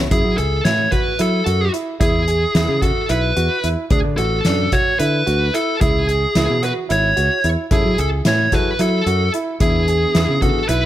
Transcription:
0.11 fingered electric bass F#2, grand piano E4, lead electric guitar G#4, kick, closed hi-hat
0.25 fingered electric bass F#3
0.38 fingered electric bass C#2, grand piano G#4, lead electric guitar A4, closed hi-hat
0.65 fingered electric bass A2, grand piano E4, lead electric guitar C#5, snare, closed hi-hat
0.92 grand piano F#4, lead electric guitar B4, kick, closed hi-hat
1.19 fingered electric bass F#3, grand piano E4, lead electric guitar A4, closed hi-hat
1.46 fingered electric bass F#2, grand piano F#4, closed hi-hat
1.73 grand piano E4, closed hi-hat
2.00 fingered electric bass E2, grand piano E4, lead electric guitar G#4, kick, closed hi-hat
2.28 grand piano G#4, closed hi-hat
2.55 fingered electric bass E2, grand piano E4, snare, closed hi-hat
2.69 fingered electric bass C#3
2.82 grand piano F#4, lead electric guitar A4, kick, closed hi-hat
3.09 fingered electric bass B1, grand piano E4, lead electric guitar B4, closed hi-hat
3.36 fingered electric bass E2, grand piano F#4, closed hi-hat
3.63 fingered electric bass E2, grand piano E4, closed hi-hat
3.90 fingered electric bass D2, grand piano D4, lead electric guitar G#4, kick, closed hi-hat
4.04 fingered electric bass D3
4.17 fingered electric bass A1, grand piano F#4, lead electric guitar A4, closed hi-hat
4.45 fingered electric bass F#2, grand piano D4, snare, closed hi-hat
4.72 grand piano F#4, lead electric guitar C#5, kick, closed hi-hat
4.99 fingered electric bass D3, grand piano E4, lead electric guitar B4, closed hi-hat
5.27 fingered electric bass D2, grand piano F#4, closed hi-hat
5.54 grand piano E4, lead electric guitar A4, closed hi-hat
5.81 fingered electric bass C#2, grand piano E4, lead electric guitar G#4, kick, closed hi-hat
6.08 grand piano G#4, closed hi-hat
6.35 fingered electric bass C#2, grand piano E4, snare, closed hi-hat
6.50 fingered electric bass B2
6.63 grand piano F#4, lead electric guitar B4, closed hi-hat
6.89 fingered electric bass G#1, grand piano E4, lead electric guitar C#5, closed hi-hat
7.16 fingered electric bass C#2, grand piano F#4, closed hi-hat
7.44 fingered electric bass E2, grand piano E4, closed hi-hat
7.71 fingered electric bass F#2, tine electric piano F#3 E4 G#4 A4, grand piano E4, lead electric guitar G#4, kick, closed hi-hat
7.85 fingered electric bass F#3
7.98 fingered electric bass C#2, grand piano G#4, lead electric guitar A4, closed hi-hat
8.25 fingered electric bass A2, grand piano E4, lead electric guitar C#5, snare, closed hi-hat
8.52 tine electric piano F#3 E4 G#4 A4, grand piano F#4, lead electric guitar B4, kick, snare, closed hi-hat
8.79 fingered electric bass F#3, grand piano E4, lead electric guitar A4, closed hi-hat
9.06 fingered electric bass F#2, grand piano F#4, closed hi-hat
9.34 grand piano E4, closed hi-hat
9.60 fingered electric bass E2, tine electric piano E3 B3 D4 G#4, grand piano E4, lead electric guitar G#4, kick, closed hi-hat
9.88 grand piano G#4, closed hi-hat
10.14 fingered electric bass E2, grand piano E4, snare, closed hi-hat
10.28 fingered electric bass C#3
10.42 tine electric piano E3 B3 D4 G#4, grand piano F#4, lead electric guitar A4, kick, closed hi-hat
10.69 fingered electric bass B1, grand piano E4, lead electric guitar B4, closed hi-hat

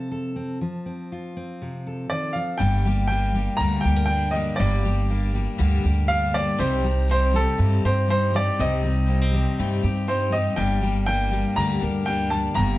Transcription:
Already playing: steel-string acoustic guitar C3 F3 C4 F4 A4, upright piano A5
0.11 steel-string acoustic guitar A4
0.36 steel-string acoustic guitar C4
0.61 steel-string acoustic guitar F3
0.86 steel-string acoustic guitar C4
1.12 steel-string acoustic guitar F4
1.37 steel-string acoustic guitar C4
1.62 steel-string acoustic guitar C3
1.87 steel-string acoustic guitar A4
2.10 steel-string acoustic guitar D#3, upright piano D5
2.33 steel-string acoustic guitar F3, upright piano F5
2.58 upright bass G1, steel-string acoustic guitar G2 D3 G3 A#3 D4 G4, upright piano G5
2.85 steel-string acoustic guitar G3 A#3 D4 G4
3.08 steel-string acoustic guitar G3 A#3 D4, upright piano G5
3.12 steel-string acoustic guitar G4
3.34 steel-string acoustic guitar G3 A#3 D4 G4
3.57 upright bass D2, steel-string acoustic guitar G2 D3 G3 A#3, upright piano A#5
3.61 steel-string acoustic guitar D4 G4
3.81 steel-string acoustic guitar G4, upright piano G5
3.85 upright bass D2, steel-string acoustic guitar G3 A#3 D4
3.96 steel-string acoustic guitar A#4
4.06 steel-string acoustic guitar G3, upright piano G5
4.10 steel-string acoustic guitar A#3 D4 G4
4.31 steel-string acoustic guitar A#3 D4 G4, upright piano D#5
4.36 steel-string acoustic guitar G3
4.56 upright bass G1, steel-string acoustic guitar G2 D3 G3 D4, upright piano D5
4.60 steel-string acoustic guitar A#3 G4
4.84 steel-string acoustic guitar G3 A#3 D4 G4
5.09 steel-string acoustic guitar G3 A#3 D4 G4
5.33 steel-string acoustic guitar G3 A#3 D4 G4
5.58 upright bass D2, steel-string acoustic guitar G2 D3 G3 A#3 D4 G4
5.83 upright bass D2, steel-string acoustic guitar G3 A#3 D4 G4 A#4
6.08 steel-string acoustic guitar G3 A#3 D4 G4, upright piano F5
6.33 steel-string acoustic guitar G3 A#3 D4 G4, upright piano D5
6.58 upright bass C2, steel-string acoustic guitar C3 G3 C4 D#4 G4, upright piano C5
6.84 steel-string acoustic guitar G3 C4 D#4 G4
7.08 steel-string acoustic guitar G3 C4 D#4 G4, upright piano C5
7.33 steel-string acoustic guitar G3 C4 D#4 G4, upright piano A4
7.58 steel-string acoustic guitar G2 C3 G3 C4 D#4 G4, upright bass G2
7.84 upright bass G2, steel-string acoustic guitar C4 D#4 G4, upright piano C5
8.08 steel-string acoustic guitar G3 C4 D#4 G4, upright piano C5
8.34 steel-string acoustic guitar G3 C4 D#4 G4, upright piano D5
8.59 upright bass C2, steel-string acoustic guitar C3 G3 C4 D#4 G4, upright piano D#5
8.83 steel-string acoustic guitar G3 C4 D#4 G4
9.06 steel-string acoustic guitar G3 A#3 C4 D#4 G4
9.21 steel-string acoustic guitar C4
9.32 steel-string acoustic guitar G3 C4 D#4 G4
9.58 steel-string acoustic guitar G2 C3 G3 C4 D#4 G4, upright bass G2
9.82 upright bass G2, steel-string acoustic guitar C4 D#4 G4
10.07 steel-string acoustic guitar G3 C4 D#4 G4, upright piano C5
10.32 steel-string acoustic guitar G3 C4 D#4 G4, upright piano D#5
10.56 upright bass G1, steel-string acoustic guitar G2 D3 G3 A#3 D4 G4, upright piano G5
10.82 steel-string acoustic guitar G3 A#3 D4 G4
11.06 steel-string acoustic guitar G3 A#3 D4 G4, upright piano G5
11.31 steel-string acoustic guitar G3 A#3 D4 G4
11.56 upright bass D2, steel-string acoustic guitar G2 D3 G3 A#3 D4 G4, upright piano A#5
11.80 upright bass D2, steel-string acoustic guitar G3 A#3 D4 G4 A#4
12.05 steel-string acoustic guitar G3 A#3 D4 G4, upright piano G5
12.30 steel-string acoustic guitar G3 A#3 D4 G4, upright piano A5
12.54 upright bass G1, steel-string acoustic guitar G2 D3 G3 A#3 D4 G4, upright piano A#5

